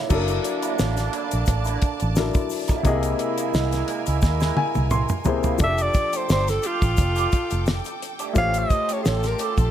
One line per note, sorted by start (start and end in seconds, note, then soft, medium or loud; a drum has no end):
0.00 0.09 F#3 medium
0.00 0.10 D4 medium
0.00 0.11 E4 medium
0.00 0.11 A4 medium
0.00 0.12 A#4 loud
0.09 0.39 F#1 loud
0.09 2.47 D3 medium
0.09 2.12 F#3 medium
0.09 0.26 F#3 medium
0.09 0.27 A#3 medium
0.09 2.47 A#3 medium
0.09 2.12 D4 medium
0.09 2.47 D4 medium
0.09 2.13 E4 medium
0.09 0.27 E4 medium
0.09 2.13 A4 medium
0.09 2.14 A#4 medium
0.09 2.83 D5 medium
0.09 2.83 A5 medium
0.09 kick loud
0.09 crash medium
0.09 shaker medium
0.28 muted clean electric guitar stroke soft
0.28 closed hi-hat soft
0.28 shaker medium
0.44 muted clean electric guitar stroke soft
0.44 closed hi-hat medium
0.62 0.74 F#3 soft
0.62 0.74 A#3 medium
0.62 0.74 E4 medium
0.62 closed hi-hat medium
0.62 shaker soft
0.78 1.08 A1 medium
0.78 0.95 F#3 medium
0.78 0.95 A#3 medium
0.78 0.96 E4 medium
0.78 snare loud
0.78 shaker medium
0.97 muted clean electric guitar stroke soft
0.97 snare soft
0.97 closed hi-hat soft
0.97 shaker soft
1.12 1.26 F#3 medium
1.12 1.26 A#3 medium
1.12 1.26 E4 medium
1.12 closed hi-hat medium
1.31 1.46 A#1 medium
1.31 muted clean electric guitar stroke soft
1.31 closed hi-hat medium
1.31 shaker soft
1.46 1.76 A1 medium
1.46 muted clean electric guitar stroke soft
1.46 kick loud
1.46 closed hi-hat medium
1.46 shaker medium
1.65 1.80 F#3 medium
1.65 1.80 A#3 medium
1.65 1.80 E4 medium
1.65 closed hi-hat medium
1.65 shaker soft
1.81 muted clean electric guitar stroke soft
1.81 kick medium
1.81 closed hi-hat medium
2.00 2.30 A1 medium
2.00 muted clean electric guitar stroke soft
2.00 closed hi-hat soft
2.00 shaker soft
2.16 2.85 F#3 medium
2.16 2.85 D4 soft
2.16 2.84 E4 medium
2.16 2.86 A4 soft
2.16 2.86 A#4 medium
2.16 muted clean electric guitar stroke soft
2.16 snare loud
2.16 shaker medium
2.34 muted clean electric guitar stroke soft
2.34 kick loud
2.34 closed hi-hat medium
2.34 shaker soft
2.50 open hi-hat medium
2.50 shaker medium
2.68 2.84 F#3 medium
2.68 2.84 A#3 medium
2.68 2.84 E4 medium
2.68 kick medium
2.68 snare soft
2.68 closed hi-hat medium
2.68 shaker soft
2.83 3.13 C2 loud
2.83 5.21 C3 medium
2.83 3.01 G#3 medium
2.83 5.22 G#3 medium
2.83 5.22 A#3 medium
2.83 3.02 A#3 medium
2.83 5.22 E4 medium
2.83 3.02 E4 medium
2.83 5.23 G#4 medium
2.83 5.58 A#4 medium
2.83 5.23 D#5 medium
2.83 5.58 G#5 medium
2.83 kick loud
2.83 closed hi-hat medium
2.83 shaker medium
3.03 muted clean electric guitar stroke soft
3.03 closed hi-hat medium
3.03 shaker soft
3.19 muted clean electric guitar stroke soft
3.19 closed hi-hat medium
3.38 3.50 G#3 soft
3.38 3.49 A#3 soft
3.38 3.49 E4 medium
3.38 closed hi-hat medium
3.38 shaker soft
3.53 3.82 C2 loud
3.53 3.70 G#3 medium
3.53 3.70 A#3 medium
3.53 3.71 E4 medium
3.53 snare loud
3.53 shaker medium
3.72 muted clean electric guitar stroke soft
3.72 snare soft
3.72 closed hi-hat medium
3.72 shaker soft
3.87 4.01 G#3 medium
3.87 4.01 A#3 medium
3.87 4.01 E4 medium
3.87 closed hi-hat medium
4.06 4.20 C#2 medium
4.06 muted clean electric guitar stroke soft
4.06 closed hi-hat medium
4.06 shaker medium
4.21 4.51 D#2 medium
4.21 muted clean electric guitar stroke soft
4.21 kick loud
4.21 snare medium
4.21 shaker medium
4.40 4.55 G#3 soft
4.40 4.56 A#3 medium
4.40 4.55 E4 medium
4.40 snare medium
4.40 shaker soft
4.56 4.89 G#5 medium
4.56 muted clean electric guitar stroke soft
4.56 high tom medium
4.75 5.04 C2 medium
4.75 muted clean electric guitar stroke soft
4.75 high tom medium
4.75 shaker soft
4.90 5.56 C6 medium
4.90 muted clean electric guitar stroke soft
4.90 mid tom medium
4.90 shaker medium
5.09 muted clean electric guitar stroke soft
5.09 mid tom medium
5.09 shaker medium
5.24 5.60 C3 medium
5.24 5.60 A#3 medium
5.24 5.60 E4 medium
5.24 5.61 G#4 medium
5.24 5.61 C5 medium
5.24 floor tom loud
5.24 shaker medium
5.43 5.59 G#3 soft
5.43 5.59 A#3 medium
5.43 5.58 E4 medium
5.43 floor tom medium
5.43 shaker soft
5.58 5.88 F1 loud
5.58 8.31 F3 medium
5.58 5.76 A3 medium
5.58 8.32 D4 medium
5.58 5.77 D4 medium
5.58 8.32 G4 medium
5.58 5.77 G4 medium
5.58 8.33 A4 medium
5.58 8.33 G5 medium
5.58 8.33 D6 medium
5.58 kick loud
5.58 closed hi-hat medium
5.58 shaker medium
5.64 5.84 E5 loud
5.78 muted clean electric guitar stroke soft
5.78 closed hi-hat soft
5.78 shaker soft
5.82 6.18 D5 loud
5.94 muted clean electric guitar stroke soft
5.94 kick medium
5.94 closed hi-hat medium
5.94 shaker soft
6.13 6.25 A3 soft
6.13 6.24 D4 soft
6.13 6.24 G4 soft
6.13 6.31 C5 medium
6.13 closed hi-hat medium
6.13 shaker medium
6.29 6.58 G1 medium
6.29 6.46 A3 medium
6.29 6.46 D4 medium
6.29 6.46 G4 medium
6.29 6.51 C5 loud
6.29 snare loud
6.29 shaker medium
6.48 6.68 A4 medium
6.48 muted clean electric guitar stroke soft
6.48 snare soft
6.48 closed hi-hat soft
6.48 shaker soft
6.62 6.76 A3 medium
6.62 6.77 D4 medium
6.62 8.03 F4 medium
6.62 6.77 G4 medium
6.62 closed hi-hat medium
6.62 shaker medium
6.82 6.95 A1 medium
6.82 muted clean electric guitar stroke soft
6.82 kick medium
6.82 closed hi-hat medium
6.82 shaker soft
6.97 7.26 F1 loud
6.97 muted clean electric guitar stroke soft
6.97 kick loud
6.97 closed hi-hat medium
6.97 shaker medium
7.16 7.31 A3 medium
7.16 7.31 D4 medium
7.16 7.30 G4 medium
7.16 closed hi-hat medium
7.16 shaker soft
7.32 muted clean electric guitar stroke soft
7.32 kick medium
7.32 closed hi-hat medium
7.32 shaker soft
7.50 7.80 F1 medium
7.50 muted clean electric guitar stroke soft
7.50 closed hi-hat soft
7.50 shaker soft
7.66 muted clean electric guitar stroke soft
7.66 snare loud
7.66 shaker medium
7.85 muted clean electric guitar stroke soft
7.85 closed hi-hat medium
7.85 shaker soft
8.02 closed hi-hat medium
8.19 8.34 A3 medium
8.19 8.34 D4 medium
8.19 8.34 G4 medium
8.19 closed hi-hat medium
8.19 shaker soft
8.33 8.64 A1 loud
8.33 9.71 A3 medium
8.33 8.52 A3 medium
8.33 8.52 C#4 medium
8.33 9.71 F4 medium
8.33 9.71 G4 medium
8.33 8.53 G4 medium
8.33 9.71 C5 medium
8.33 9.71 A5 medium
8.33 kick loud
8.33 closed hi-hat medium
8.33 shaker medium
8.37 9.71 C#5 medium
8.37 8.60 F5 loud
8.54 muted clean electric guitar stroke soft
8.54 closed hi-hat medium
8.54 shaker medium
8.59 8.94 D#5 loud
8.70 muted clean electric guitar stroke soft
8.70 kick medium
8.70 closed hi-hat medium
8.70 shaker soft
8.88 9.00 A3 medium
8.88 9.00 C#4 soft
8.88 9.00 G4 medium
8.88 closed hi-hat medium
8.88 shaker medium
8.93 9.03 C#5 medium
9.03 9.34 A1 medium
9.03 9.21 A3 medium
9.03 9.21 C#4 medium
9.03 9.22 G4 medium
9.03 9.09 G#4 medium
9.03 snare loud
9.03 shaker medium
9.08 9.29 A4 loud
9.23 muted clean electric guitar stroke soft
9.23 snare soft
9.23 closed hi-hat soft
9.23 shaker soft
9.27 9.45 A#4 medium
9.39 9.52 A3 medium
9.39 9.53 C#4 medium
9.39 9.53 G4 medium
9.39 closed hi-hat medium
9.39 shaker soft
9.43 9.71 A4 medium
9.57 9.71 A#1 medium
9.57 muted clean electric guitar stroke soft
9.57 kick medium
9.57 closed hi-hat medium
9.57 shaker soft